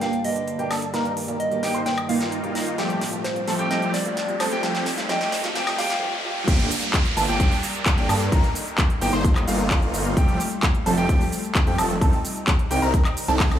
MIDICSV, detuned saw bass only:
0, 0, Header, 1, 2, 480
1, 0, Start_track
1, 0, Key_signature, -2, "minor"
1, 0, Tempo, 461538
1, 976, Time_signature, 4, 2, 24, 8
1, 14135, End_track
2, 0, Start_track
2, 0, Title_t, "Detuned saw bass"
2, 0, Program_c, 0, 39
2, 6735, Note_on_c, 0, 31, 99
2, 6954, Note_off_c, 0, 31, 0
2, 7455, Note_on_c, 0, 31, 99
2, 7551, Note_off_c, 0, 31, 0
2, 7575, Note_on_c, 0, 31, 97
2, 7671, Note_off_c, 0, 31, 0
2, 7695, Note_on_c, 0, 31, 96
2, 7823, Note_off_c, 0, 31, 0
2, 8295, Note_on_c, 0, 31, 100
2, 8391, Note_off_c, 0, 31, 0
2, 8415, Note_on_c, 0, 43, 97
2, 8631, Note_off_c, 0, 43, 0
2, 8655, Note_on_c, 0, 31, 99
2, 8782, Note_off_c, 0, 31, 0
2, 9374, Note_on_c, 0, 31, 99
2, 9471, Note_off_c, 0, 31, 0
2, 9496, Note_on_c, 0, 31, 94
2, 9831, Note_off_c, 0, 31, 0
2, 9855, Note_on_c, 0, 31, 100
2, 10551, Note_off_c, 0, 31, 0
2, 10575, Note_on_c, 0, 29, 99
2, 10794, Note_off_c, 0, 29, 0
2, 11295, Note_on_c, 0, 29, 98
2, 11391, Note_off_c, 0, 29, 0
2, 11415, Note_on_c, 0, 29, 95
2, 11511, Note_off_c, 0, 29, 0
2, 11535, Note_on_c, 0, 29, 93
2, 11663, Note_off_c, 0, 29, 0
2, 12134, Note_on_c, 0, 41, 96
2, 12230, Note_off_c, 0, 41, 0
2, 12254, Note_on_c, 0, 29, 100
2, 12471, Note_off_c, 0, 29, 0
2, 12495, Note_on_c, 0, 36, 96
2, 12623, Note_off_c, 0, 36, 0
2, 13214, Note_on_c, 0, 36, 100
2, 13311, Note_off_c, 0, 36, 0
2, 13334, Note_on_c, 0, 36, 94
2, 13462, Note_off_c, 0, 36, 0
2, 13815, Note_on_c, 0, 36, 89
2, 14135, Note_off_c, 0, 36, 0
2, 14135, End_track
0, 0, End_of_file